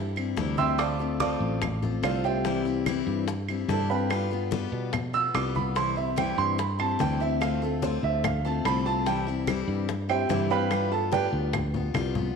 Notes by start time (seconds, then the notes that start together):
Already playing: G2 E4 G4 C5 E5
0.16 G3 C4 E4, high conga, claves
0.36 D2 C3 E3 G3 C4 E4, high bongo, low bongo, high conga
0.57 G3 C4 E4 E5 G5 C6 E6, high conga
0.78 D3 A3 C4 F4 D5 F5 A5 D6, high bongo, claves
0.99 A3 C4 F4, high bongo, high conga
1.20 D3 A3 C4 F4 D5 F5 A5 D6, high bongo, high conga
1.41 A1, high conga
1.62 muted steel-string acoustic guitar stroke, high bongo, high conga, low conga, claves
1.82 A3 C4 F4, high bongo, high conga, low conga
2.02 C2 D3 A3 C4 F4 C5 D5 F5, high bongo, low bongo, high conga, claves
2.24 A3 C4 F4 G4 C5 E5 G5, high bongo
2.45 C3 E3 G3 C4 E4, high bongo, high conga
2.65 G3 C4 E4, high conga
2.86 C3 E3 G3 C4 E4, high bongo, high conga, claves
3.07 G2
3.28 muted steel-string acoustic guitar stroke, high bongo, high conga
3.48 G3 C4 E4, high conga, claves
3.68 G2 C3 E3 G3 C4 E4 A4 A5, high bongo, low bongo, high conga
3.90 G3 C4 E4 B4 F5 G5 B5
4.10 G3 B3 F4, high bongo, high conga, claves
4.31 B3 F4, high bongo, high conga
4.51 G3 B3 F4, high bongo, high conga
4.72 B2, high conga
4.93 muted steel-string acoustic guitar stroke, high bongo, high conga, low conga, claves
5.13 B3 F4 E6, high bongo, high conga
5.34 C2 G3 B3 F4 D6, high bongo, low bongo, high conga, claves
5.55 B3 F4 B5, high bongo, high conga
5.75 C3 E3 G3 C4 E4 C6, high bongo, high conga
5.96 G3 C4 E4 E5, high conga
6.16 C3 E3 G3 C4 E4 G5, high bongo, high conga, claves
6.38 G2 C6
6.58 B5, muted steel-string acoustic guitar stroke, high bongo, high conga
6.79 G3 C4 E4 A5, high conga, claves
6.99 D2 C3 E3 G3 C4 E4 G5, high bongo, low bongo, high conga
7.20 G3 C4 E4 E5
7.41 D3 A3 C4 F4 F5, high bongo, high conga, claves
7.62 A3 C4 F4 A4, high bongo, high conga
7.82 D3 A3 C4 F4 C5, high bongo, high conga
8.03 D2 E5, high conga
8.24 F5, muted steel-string acoustic guitar stroke, high bongo, high conga, low conga, claves
8.44 A3 C4 F4 A5, high bongo, high conga
8.65 C2 D3 A3 C4 F4 B5, high bongo, low bongo, high conga, claves
8.86 A3 C4 F4 A5, high bongo
9.06 C3 E3 G3 C4 E4 G5, high bongo, high conga
9.27 G3 C4 E4, high conga
9.47 C3 E3 G3 C4 E4, high bongo, high conga, claves
9.68 G2
9.89 muted steel-string acoustic guitar stroke, high bongo, high conga
10.09 G3 C4 E4 G4 C5 E5 G5, high conga, claves
10.29 G2 C3 E3 G3 C4 E4 G4 C5 E5, high bongo, low bongo, high conga
10.50 G3 C4 E4 B4 F5 G5 B5
10.71 G3 B3 F4, high bongo, high conga, claves
10.92 B3 F4 A4 A5, high bongo, high conga
11.11 G3 B3 F4 G4 B4 D5 G5, high bongo, high conga
11.33 D2, high conga
11.53 muted steel-string acoustic guitar stroke, high bongo, high conga, low conga, claves
11.74 B3 F4, high bongo, high conga, low conga
11.94 C2 G3 B3 F4, high bongo, low bongo, high conga, claves
12.15 B3 F4, high bongo, low conga